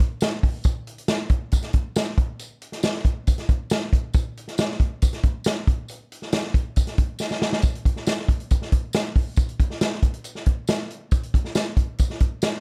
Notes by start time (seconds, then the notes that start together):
0.00 kick
0.21 snare, closed hi-hat, tambourine
0.43 kick, open hi-hat
0.64 kick, closed hi-hat, tambourine
0.87 closed hi-hat
0.98 closed hi-hat
1.08 snare, closed hi-hat, tambourine
1.29 kick, closed hi-hat
1.51 kick, closed hi-hat, tambourine
1.62 snare, closed hi-hat
1.73 kick, closed hi-hat
1.96 snare, closed hi-hat, tambourine
2.18 kick, closed hi-hat
2.39 closed hi-hat, tambourine
2.62 closed hi-hat
2.72 snare, closed hi-hat
2.83 snare, closed hi-hat, tambourine
2.95 snare
3.05 kick, closed hi-hat
3.27 kick, closed hi-hat, tambourine
3.38 snare, closed hi-hat
3.49 kick, closed hi-hat
3.70 snare, closed hi-hat, tambourine
3.93 kick, closed hi-hat
4.14 kick, closed hi-hat, tambourine
4.37 closed hi-hat
4.48 snare, closed hi-hat
4.58 snare, closed hi-hat, tambourine
4.70 snare
4.80 kick, closed hi-hat
5.02 kick, closed hi-hat, tambourine
5.13 snare, closed hi-hat
5.23 kick, closed hi-hat
5.44 snare, closed hi-hat, tambourine
5.67 kick, closed hi-hat
5.88 closed hi-hat, tambourine
6.12 closed hi-hat
6.22 snare
6.32 snare, closed hi-hat, tambourine
6.44 snare
6.54 kick, closed hi-hat
6.76 kick, closed hi-hat, tambourine
6.87 snare, closed hi-hat
6.98 kick, closed hi-hat
7.19 snare, tambourine
7.31 snare
7.42 snare
7.53 snare
7.62 kick, closed hi-hat, tambourine
7.75 closed hi-hat
7.85 kick, closed hi-hat
7.96 snare
8.07 snare, closed hi-hat, tambourine
8.18 snare
8.28 kick, closed hi-hat
8.40 closed hi-hat
8.50 kick, closed hi-hat, tambourine
8.62 snare
8.72 kick, closed hi-hat
8.93 snare, closed hi-hat, tambourine
9.16 kick, open hi-hat
9.36 kick, closed hi-hat, tambourine
9.49 closed hi-hat
9.60 kick, closed hi-hat
9.70 snare
9.81 snare, closed hi-hat, tambourine
9.92 snare
10.02 kick, closed hi-hat
10.14 closed hi-hat
10.24 closed hi-hat, tambourine
10.35 snare
10.46 kick, closed hi-hat
10.67 snare, closed hi-hat, tambourine
10.90 closed hi-hat
11.11 kick, closed hi-hat, tambourine
11.23 closed hi-hat
11.34 kick, closed hi-hat
11.45 snare
11.55 snare, closed hi-hat, tambourine
11.77 kick, closed hi-hat
11.98 kick, closed hi-hat, tambourine
12.10 snare
12.20 kick, closed hi-hat
12.42 snare, closed hi-hat, tambourine